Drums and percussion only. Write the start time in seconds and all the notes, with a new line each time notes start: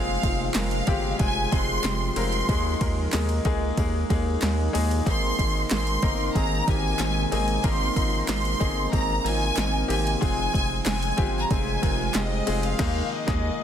0.23 kick, ride
0.54 snare, clap, ride
0.71 ride
0.87 kick, ride
1.19 kick, ride
1.52 kick, ride
1.84 snare, clap, ride
2.16 snare, ride
2.33 ride
2.49 kick, ride
2.81 kick, ride
3.13 snare, clap, ride
3.29 ride
3.45 kick, ride
3.77 kick, ride
4.10 kick, ride
4.42 snare, clap, ride
4.75 open hi-hat, ride
4.91 ride
5.06 kick, ride
5.39 kick, ride
5.71 snare, clap, ride
5.87 ride
6.02 kick, ride
6.35 kick, ride
6.68 kick, ride
6.99 snare, clap, ride
7.32 snare, ride
7.48 ride
7.64 kick, ride
7.96 kick, ride
8.28 snare, clap, ride
8.45 ride
8.61 kick, ride
8.93 kick, ride
9.26 ride
9.57 snare, clap, ride
9.90 snare, ride
10.07 ride
10.22 kick, ride
10.54 kick, ride
10.86 snare, clap, ride
11.02 ride
11.18 kick, ride
11.51 kick, ride
11.83 kick, ride
12.14 snare, clap, ride
12.47 snare, ride
12.63 ride
12.79 kick, snare, crash
13.28 kick, snare